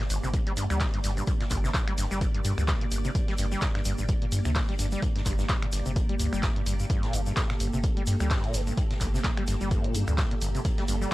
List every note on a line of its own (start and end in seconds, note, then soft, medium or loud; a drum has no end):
0.00 11.14 A#3 medium
0.00 11.14 G4 medium
0.00 6.89 D5 medium
0.00 snare soft
0.10 0.19 G1 loud
0.10 0.18 G1 medium
0.10 closed hi-hat medium
0.10 open hi-hat medium
0.10 shaker medium
0.23 0.39 G1 medium
0.23 0.29 C3 medium
0.23 shaker soft
0.34 0.38 G1 loud
0.34 kick loud
0.34 closed hi-hat medium
0.34 shaker soft
0.47 0.53 G3 medium
0.47 closed hi-hat medium
0.57 0.66 G2 medium
0.57 0.64 G2 medium
0.57 closed hi-hat medium
0.57 open hi-hat loud
0.57 shaker medium
0.70 0.86 D2 loud
0.70 0.79 G3 medium
0.70 finger snap medium
0.70 closed hi-hat soft
0.70 shaker medium
0.80 0.85 G2 medium
0.80 kick loud
0.80 snare loud
0.80 clap loud
0.80 closed hi-hat medium
0.80 open hi-hat medium
0.80 shaker soft
0.94 0.99 G2 medium
0.94 closed hi-hat medium
1.04 1.21 G1 medium
1.04 1.11 G2 medium
1.04 snare soft
1.04 closed hi-hat medium
1.04 open hi-hat medium
1.04 shaker medium
1.17 1.23 G2 medium
1.17 closed hi-hat soft
1.17 shaker soft
1.27 1.32 G2 medium
1.27 kick loud
1.27 closed hi-hat medium
1.27 shaker soft
1.40 1.44 A#2 medium
1.40 snare soft
1.40 closed hi-hat soft
1.50 1.68 G1 loud
1.50 1.58 G1 medium
1.50 kick medium
1.50 clap soft
1.50 closed hi-hat medium
1.50 open hi-hat loud
1.50 shaker loud
1.64 1.70 C3 medium
1.64 snare soft
1.64 shaker medium
1.74 1.79 G1 loud
1.74 kick loud
1.74 snare loud
1.74 clap loud
1.74 closed hi-hat medium
1.74 shaker soft
1.88 1.93 G3 medium
1.88 finger snap medium
1.88 closed hi-hat soft
1.98 2.07 G1 loud
1.98 2.05 G2 medium
1.98 snare soft
1.98 closed hi-hat medium
1.98 open hi-hat medium
1.98 shaker loud
2.11 2.26 G1 medium
2.11 2.19 G3 medium
2.11 closed hi-hat soft
2.11 shaker medium
2.21 2.26 G2 medium
2.21 kick loud
2.21 closed hi-hat medium
2.21 shaker soft
2.34 2.40 G2 medium
2.34 closed hi-hat medium
2.45 2.54 G2 medium
2.45 2.52 G2 medium
2.45 closed hi-hat medium
2.45 open hi-hat loud
2.45 shaker medium
2.58 2.73 D2 loud
2.58 2.64 G2 medium
2.58 finger snap medium
2.58 shaker medium
2.68 2.72 G2 medium
2.68 kick loud
2.68 snare loud
2.68 clap loud
2.68 closed hi-hat medium
2.68 shaker soft
2.81 2.85 A#2 medium
2.81 closed hi-hat soft
2.91 3.08 G1 medium
2.91 2.99 G1 medium
2.91 closed hi-hat medium
2.91 open hi-hat loud
2.91 shaker medium
3.05 3.10 C3 medium
3.05 closed hi-hat soft
3.05 shaker soft
3.15 3.19 G1 loud
3.15 kick loud
3.15 closed hi-hat medium
3.15 shaker soft
3.28 3.34 G3 medium
3.28 snare soft
3.28 closed hi-hat medium
3.38 3.55 G1 loud
3.38 3.46 G2 medium
3.38 closed hi-hat medium
3.38 open hi-hat loud
3.38 shaker medium
3.52 3.60 G3 medium
3.52 closed hi-hat soft
3.52 shaker medium
3.61 3.66 G2 medium
3.61 kick loud
3.61 snare loud
3.61 clap loud
3.61 closed hi-hat medium
3.61 shaker soft
3.75 3.81 G2 medium
3.75 finger snap medium
3.75 snare soft
3.75 closed hi-hat soft
3.85 3.94 G1 loud
3.85 3.93 G2 medium
3.85 closed hi-hat medium
3.85 open hi-hat medium
3.85 shaker loud
3.98 4.14 G1 medium
3.98 4.04 G2 medium
3.98 shaker medium
4.08 4.13 G2 medium
4.08 kick loud
4.08 closed hi-hat medium
4.08 shaker soft
4.22 4.25 A#2 medium
4.22 closed hi-hat medium
4.32 4.39 G1 medium
4.32 4.41 G2 medium
4.32 closed hi-hat medium
4.32 open hi-hat loud
4.32 shaker medium
4.45 4.60 D2 loud
4.45 4.51 C3 medium
4.45 finger snap medium
4.45 closed hi-hat soft
4.45 shaker medium
4.55 4.60 G1 loud
4.55 kick loud
4.55 snare loud
4.55 clap loud
4.55 closed hi-hat medium
4.55 open hi-hat medium
4.55 shaker soft
4.69 4.74 G3 medium
4.69 closed hi-hat soft
4.79 4.96 G1 medium
4.79 4.86 G2 medium
4.79 snare soft
4.79 closed hi-hat medium
4.79 open hi-hat loud
4.79 shaker loud
4.92 5.01 G3 medium
4.92 closed hi-hat soft
4.92 shaker medium
5.02 5.07 G2 medium
5.02 kick loud
5.02 closed hi-hat medium
5.02 shaker soft
5.16 5.21 G2 medium
5.16 snare soft
5.16 closed hi-hat soft
5.26 5.43 G1 medium
5.26 5.33 G2 medium
5.26 kick medium
5.26 clap soft
5.26 closed hi-hat medium
5.26 open hi-hat loud
5.26 shaker medium
5.38 5.45 G2 medium
5.38 snare soft
5.38 shaker soft
5.49 5.54 G2 medium
5.49 kick loud
5.49 snare loud
5.49 clap loud
5.49 closed hi-hat medium
5.49 shaker soft
5.62 5.66 A#2 medium
5.62 finger snap medium
5.62 closed hi-hat soft
5.72 5.80 G1 medium
5.72 5.82 G1 loud
5.72 snare soft
5.72 closed hi-hat medium
5.72 open hi-hat medium
5.72 shaker medium
5.86 6.01 G1 medium
5.86 5.92 C3 medium
5.86 closed hi-hat soft
5.86 shaker medium
5.96 6.01 G1 loud
5.96 kick loud
5.96 closed hi-hat medium
5.96 shaker soft
6.09 6.15 G3 medium
6.09 closed hi-hat soft
6.19 6.29 D2 medium
6.19 6.27 G2 medium
6.19 closed hi-hat medium
6.19 open hi-hat loud
6.19 shaker loud
6.33 6.48 G1 medium
6.33 6.41 G3 medium
6.33 finger snap medium
6.33 shaker medium
6.43 6.47 G2 medium
6.43 kick loud
6.43 snare loud
6.43 clap loud
6.43 closed hi-hat medium
6.43 shaker soft
6.56 6.62 G2 medium
6.56 closed hi-hat soft
6.66 6.83 G1 loud
6.66 6.74 G2 medium
6.66 closed hi-hat medium
6.66 open hi-hat loud
6.66 shaker medium
6.79 6.85 G2 medium
6.79 closed hi-hat soft
6.79 shaker medium
6.90 7.04 G2 medium
6.90 11.14 A4 medium
6.90 kick loud
6.90 closed hi-hat medium
6.90 shaker soft
7.03 7.15 A#2 medium
7.03 snare soft
7.03 closed hi-hat soft
7.13 7.30 G1 medium
7.13 7.21 G2 medium
7.13 closed hi-hat medium
7.13 open hi-hat loud
7.13 shaker medium
7.26 7.32 G2 medium
7.26 closed hi-hat soft
7.26 shaker medium
7.37 7.41 G2 medium
7.37 kick loud
7.37 snare loud
7.37 clap loud
7.37 closed hi-hat loud
7.37 closed hi-hat medium
7.37 shaker soft
7.50 7.53 A#2 medium
7.50 finger snap medium
7.50 snare soft
7.50 closed hi-hat soft
7.60 7.69 G1 loud
7.60 7.67 G1 medium
7.60 closed hi-hat medium
7.60 open hi-hat medium
7.60 shaker medium
7.73 7.89 G1 medium
7.73 7.79 C3 medium
7.73 shaker soft
7.83 7.88 G1 loud
7.83 kick loud
7.83 closed hi-hat medium
7.83 shaker soft
7.97 8.02 G3 medium
7.97 closed hi-hat soft
8.07 8.14 G2 medium
8.07 8.16 G2 medium
8.07 closed hi-hat medium
8.07 open hi-hat loud
8.07 shaker medium
8.20 8.35 D2 loud
8.20 8.29 G3 medium
8.20 finger snap medium
8.20 closed hi-hat soft
8.20 shaker medium
8.30 8.45 G2 medium
8.30 kick loud
8.30 snare loud
8.30 clap loud
8.30 closed hi-hat medium
8.30 open hi-hat medium
8.30 shaker soft
8.44 8.56 A#2 medium
8.44 closed hi-hat soft
8.54 8.71 G1 medium
8.54 8.61 G2 medium
8.54 snare soft
8.54 closed hi-hat medium
8.54 open hi-hat medium
8.54 shaker loud
8.67 8.73 G2 medium
8.67 closed hi-hat soft
8.67 shaker soft
8.77 8.82 G2 medium
8.77 kick loud
8.77 closed hi-hat medium
8.77 shaker soft
8.91 8.94 A#2 medium
8.91 snare soft
8.91 closed hi-hat medium
9.01 9.18 G1 medium
9.01 9.08 G1 medium
9.01 kick medium
9.01 clap soft
9.01 closed hi-hat medium
9.01 open hi-hat loud
9.01 shaker medium
9.14 9.20 C3 medium
9.14 snare soft
9.14 shaker medium
9.24 9.29 G1 loud
9.24 kick loud
9.24 snare loud
9.24 clap loud
9.24 closed hi-hat medium
9.37 9.43 G3 medium
9.37 finger snap medium
9.37 closed hi-hat medium
9.47 9.57 G1 loud
9.47 9.55 G2 medium
9.47 snare soft
9.47 closed hi-hat medium
9.47 open hi-hat medium
9.47 shaker medium
9.61 9.76 G1 medium
9.61 9.69 G3 medium
9.61 closed hi-hat soft
9.61 shaker soft
9.71 9.86 G2 medium
9.71 kick loud
9.71 closed hi-hat medium
9.71 shaker soft
9.84 9.96 A#2 medium
9.84 closed hi-hat medium
9.95 10.04 G2 medium
9.95 10.02 G2 medium
9.95 closed hi-hat medium
9.95 open hi-hat loud
9.95 shaker medium
10.08 10.23 D2 loud
10.08 10.13 G2 medium
10.08 finger snap medium
10.08 shaker soft
10.18 10.22 G2 medium
10.18 kick loud
10.18 snare loud
10.18 clap loud
10.18 closed hi-hat medium
10.18 shaker soft
10.31 10.35 A#2 medium
10.31 closed hi-hat medium
10.41 10.59 G1 medium
10.41 10.49 G1 medium
10.41 closed hi-hat medium
10.41 open hi-hat medium
10.41 shaker medium
10.55 10.60 C3 medium
10.55 closed hi-hat soft
10.55 shaker soft
10.65 10.69 G1 loud
10.65 kick loud
10.65 closed hi-hat medium
10.65 shaker soft
10.78 10.84 G3 medium
10.78 snare soft
10.78 closed hi-hat medium
10.88 11.05 G1 loud
10.88 10.96 G2 medium
10.88 closed hi-hat medium
10.88 open hi-hat loud
10.88 shaker medium
11.02 11.10 G3 medium
11.02 closed hi-hat soft
11.02 shaker medium